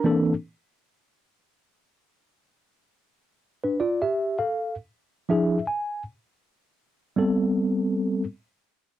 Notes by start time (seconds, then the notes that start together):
Already playing: A#4
0.04 E3 A#3 C4 D4 A4
3.64 D4 B4
3.80 F4 D5
4.02 G4 E5
4.39 A4 F5
5.29 F3 D4 E4 G#4 E5
5.67 G#5
7.16 G3 B3 C4 A4